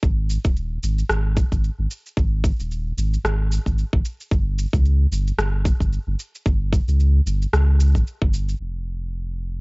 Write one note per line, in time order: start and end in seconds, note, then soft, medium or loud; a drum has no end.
0.03 0.38 G#1 medium
0.03 kick loud
0.03 shaker soft
0.30 shaker medium
0.45 0.78 D#1 loud
0.45 kick loud
0.45 shaker soft
0.57 shaker soft
0.83 1.03 G#1 medium
0.83 shaker medium
0.98 shaker soft
1.09 1.44 G#1 medium
1.09 cross-stick medium
1.09 shaker soft
1.37 kick loud
1.37 shaker medium
1.52 1.70 G#1 medium
1.52 kick medium
1.52 shaker soft
1.64 shaker soft
1.79 1.87 G#1 loud
1.91 shaker medium
2.06 shaker soft
2.17 2.52 G#1 loud
2.17 kick loud
2.17 shaker soft
2.44 kick medium
2.44 shaker medium
2.59 2.92 D#1 loud
2.59 shaker soft
2.71 shaker soft
2.98 3.17 G#1 medium
2.98 shaker medium
3.14 shaker soft
3.24 3.59 G#1 medium
3.24 cross-stick medium
3.24 shaker soft
3.52 shaker medium
3.66 3.84 G#1 loud
3.66 kick medium
3.66 shaker soft
3.78 shaker soft
3.93 4.01 G#1 loud
3.93 kick loud
4.05 shaker medium
4.20 shaker soft
4.31 4.66 G1 loud
4.31 kick loud
4.31 shaker soft
4.58 shaker medium
4.73 5.06 C#2 loud
4.73 kick medium
4.73 shaker soft
4.85 shaker soft
5.11 5.31 G1 medium
5.11 shaker medium
5.27 shaker soft
5.38 5.73 G1 medium
5.38 cross-stick medium
5.38 shaker soft
5.65 kick loud
5.65 shaker medium
5.80 5.98 G1 loud
5.80 kick medium
5.80 shaker soft
5.93 shaker soft
6.07 6.15 G1 loud
6.19 shaker medium
6.35 shaker soft
6.46 6.80 G1 loud
6.46 kick loud
6.46 shaker soft
6.73 kick loud
6.73 shaker medium
6.88 7.20 C#2 loud
6.88 shaker soft
7.00 shaker soft
7.26 7.46 G1 medium
7.26 shaker medium
7.42 shaker soft
7.53 7.97 C#2 medium
7.53 cross-stick medium
7.53 shaker soft
7.80 shaker medium
7.95 8.03 G1 medium
7.95 kick medium
7.95 shaker soft
8.07 shaker soft
8.22 8.54 G1 loud
8.22 kick loud
8.34 shaker medium
8.49 shaker soft
8.60 9.61 F1 medium